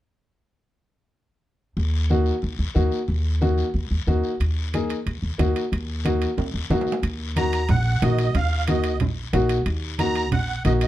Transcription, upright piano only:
2.10 A#3 D#4 F#4
2.75 A#3 D#4 F#4
3.41 A#3 D#4 F#4
4.07 A#3 D#4 F#4
4.74 A#3 D#4 G#4
5.38 A#3 D#4 F#4
6.05 A#3 D#4 F#4
6.70 A#3 D#4 F#4
7.36 A#3 D#4 F#4
8.02 A#3 D#4 F#4
8.68 A#3 D#4 F#4
9.33 A#3 D#4 F#4
9.99 A#3 D#4 F#4
10.65 A#3 D#4 F#4

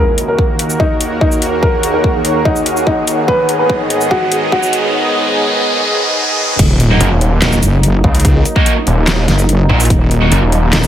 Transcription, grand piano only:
Already playing: A#4
0.28 A#4
0.80 D#4
1.21 D#4
1.62 A#4
1.94 A#4
2.45 D#4
2.87 D#4
3.28 B4
3.59 B4
4.11 F#4
4.52 F#4

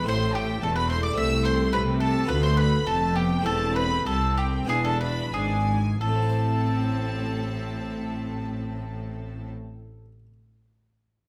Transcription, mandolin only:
0.08 C5
0.35 G4
0.63 A4
0.76 B4
0.90 C5
1.03 D5
1.17 E5
1.45 C5
1.73 B4
2.00 A4
2.29 B4
2.43 C5
2.57 B4
2.87 A4
3.16 G4
3.46 A4
3.76 B4
4.06 A4
4.38 G4
4.69 G#4
4.85 A4
5.01 B4
5.34 G#4
6.01 A4

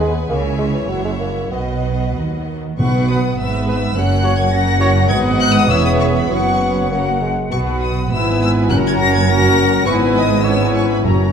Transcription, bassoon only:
0.00 G#3
0.30 A#3
0.59 G#3
0.73 E3
0.88 F#3
1.05 G#3
1.20 A#3
1.51 B3
2.79 B3
3.96 C#4
5.10 B3
6.91 A#3
7.21 G#3
7.51 B3
8.71 C#4
9.86 B3
10.44 B3
11.05 C#4

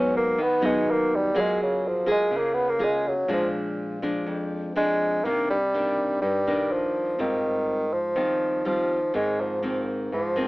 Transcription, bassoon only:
Already playing: C#4
0.17 A#3
0.42 B3
0.66 G#3
0.91 A#3
1.15 G3
1.39 G#3
1.62 C#3
1.88 F3
2.11 G#3
2.37 A#3
2.53 B3
2.69 A#3
2.84 G#3
3.08 F#3
3.33 F3
4.77 G#3
5.25 A#3
5.50 G3
6.22 G3
6.72 F3
7.21 D#3
7.93 F3
8.67 F3
9.15 G#3
9.40 F3
10.13 F3

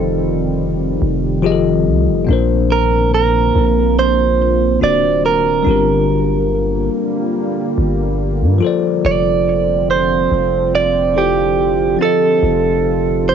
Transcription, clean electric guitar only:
Already playing: A4
2.72 A#4
3.14 A#4
3.99 C5
4.84 D5
5.26 A#4
9.06 D5
9.91 C5
10.75 D5
11.18 G4
12.02 A4
13.29 C5

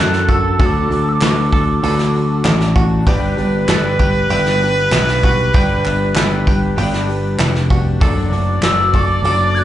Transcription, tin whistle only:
Already playing: F#6
0.29 E6
0.61 E6
0.66 D6
0.92 D6
1.09 E6
1.13 D6
1.26 C#6
1.30 D6
8.64 E6
8.94 D6
9.55 G#6
9.59 F#6

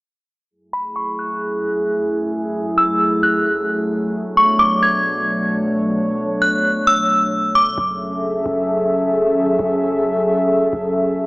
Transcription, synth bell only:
0.73 B5
0.96 C#6
1.19 F#6
2.78 E6
3.23 F#6
4.37 C#6
4.59 D6
4.83 G#6
6.42 F#6
6.87 E6
7.55 D6

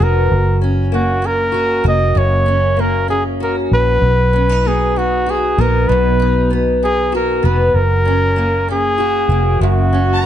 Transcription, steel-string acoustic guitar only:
Already playing: B2 D4 F#4
0.00 B3
0.61 C#4
0.92 A#3
1.22 C#4
1.52 F#4
1.84 A#3
2.15 F#2
2.46 C#4
2.77 A#3
3.08 C#4
3.40 F#4
4.33 C#4
4.49 D#4
4.65 B3
4.96 D#4
5.26 F#4
5.58 B3
5.89 B2
6.19 D#4
6.50 B3
6.83 D#4
7.12 F#4
7.43 B3
8.05 C#4
8.36 A#3
8.68 C#4
8.98 F#4
9.30 A#3
9.61 F#2
9.93 C#4
10.22 A#3

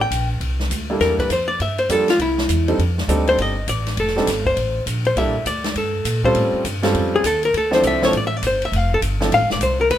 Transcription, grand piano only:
0.90 G3 A#3 D4 E4 A4
1.90 G3 A#3 D4 F4 A4
2.68 G3 C4 D4 D#4 A4
3.09 G3 C4 D4 D#4 A4
4.16 G3 C4 D4 D#4 A4
5.17 G3 A#3 D4 E4 A4
6.24 G3 C4 C#4 F4 A4
6.82 G3 C4 C#4 F4 A4
7.71 F3 C4 D4 E4 A4
8.02 F3 C4 D4 E4 A4
9.21 F3 C4 D4 E4 A4

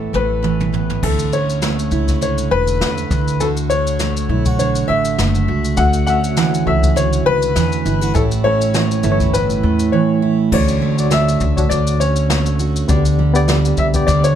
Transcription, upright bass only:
0.14 A1
1.03 D2
1.92 C#2
2.52 E1
2.81 E2
3.11 D2
4.29 B1
4.89 A1
5.19 F#1
5.48 C#2
5.78 D2
6.67 C#2
7.26 C#2
7.56 E2
7.86 G1
8.15 A1
9.04 G1
9.63 E2
10.52 D2
11.41 D2
11.71 D2
12.89 D2
13.78 D2
14.07 D2

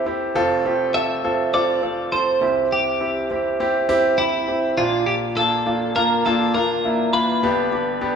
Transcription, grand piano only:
Already playing: C2 C3 C4 E4 G4 A4
0.06 C4 E4 G4
0.35 F1 F2 C4 F4 A4
0.65 C4 F4 G4
0.95 C4 F4 A4
1.24 C4 F4 A4
1.54 C4 F4 A4
1.82 C4 F4 A4
2.12 C4 F4 A4
2.41 C2 C3 C4 E4 G4
3.01 C4 E4 G4
3.31 C4 E4 G4
3.60 C4 E4 G4
3.89 C4 E4 G4
4.18 C4 E4 G4
4.48 C4 E4 G4
4.77 A#1 A#2 A#3 D4 F4
5.37 A#3 D4 F4
5.66 A#3 D4 F4
5.96 A#3 D4 F4
6.26 A#3 D4 F4
6.56 A#3 D4 F4
6.84 A#3 D4 E4
7.13 A#3 D4 F4
7.43 G1 G2 B3 D4 G4
7.72 B3 D4 G4
8.01 B3 D4 G4

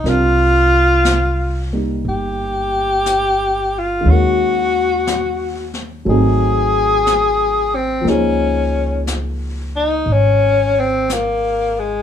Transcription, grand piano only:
0.04 G3 C4 D4 F4 A#4
1.73 G3 A#3 D#4 G4
4.01 D#3 G#3
4.06 C#4 F#4
4.12 A#4
6.05 F#3 A3 C4 D#4
6.10 G#4
8.01 F3 A#3
8.07 D#4 G#4
8.12 C5

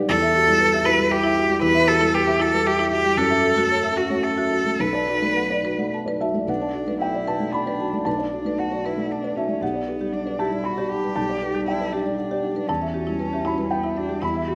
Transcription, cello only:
0.09 A4
0.85 B4
1.11 G4
1.63 B4
1.88 A4
2.15 G4
2.41 A4
2.67 G4
2.92 G4
3.17 A4
3.96 F#4
4.23 A4
4.80 B4
6.49 D4
7.01 E4
7.52 D4
8.05 D4
8.59 F#4
8.85 E4
9.11 D4
9.36 C#4
9.61 B3
10.13 D4
10.39 E4
10.65 F#4
10.90 G4
11.67 E4
11.92 D4
12.67 C#4
13.72 B3
13.97 D4
14.23 E4
14.48 F#4

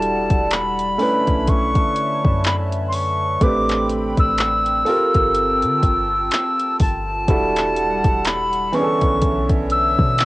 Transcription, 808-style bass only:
Already playing: E1
0.30 E1
1.28 B1
2.25 F#2
3.41 A1
4.18 A1
5.15 G1
5.63 D3
5.83 G1
6.80 G1
7.28 E1
8.05 E1
9.02 B1
9.22 B1
9.50 B1
9.99 B2

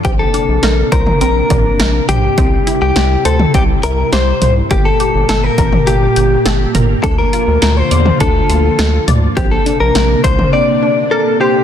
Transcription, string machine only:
0.05 C3 A#3 D4
2.38 G3 E4
4.71 A#2 A#3 G4
7.04 D3 F4
9.37 C3 A#3 D4

